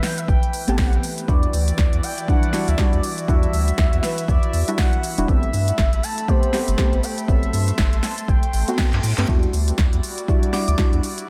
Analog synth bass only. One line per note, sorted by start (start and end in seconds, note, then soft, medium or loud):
0.28 0.38 A1 loud
0.68 0.98 A1 medium
1.28 1.47 E2 medium
1.53 1.72 D2 medium
1.78 1.88 D2 medium
1.93 2.00 E2 medium
2.68 2.75 D2 medium
2.93 3.00 E2 medium
3.28 3.47 E2 medium
3.53 3.72 D2 medium
3.78 3.88 D2 medium
3.93 4.00 E2 medium
4.28 4.38 E2 loud
4.53 4.63 E2 medium
5.18 5.25 E1 medium
5.28 5.47 A1 loud
5.53 5.72 G2 medium
5.78 5.88 G1 medium
5.93 6.00 A1 medium
6.68 6.75 G1 medium
6.93 7.00 A1 medium
7.28 7.47 A1 loud
7.53 7.72 G2 medium
7.78 7.88 G1 medium
7.93 8.00 A1 medium
8.28 8.38 A1 loud
8.53 8.63 A1 medium
8.93 9.00 G2 medium
9.03 9.13 A2 medium
9.18 9.25 G2 medium
9.28 9.47 E2 medium
9.53 9.72 D2 medium
9.78 9.88 D2 medium
9.93 10.00 E2 medium
10.68 10.75 D2 medium
10.93 11.00 E2 medium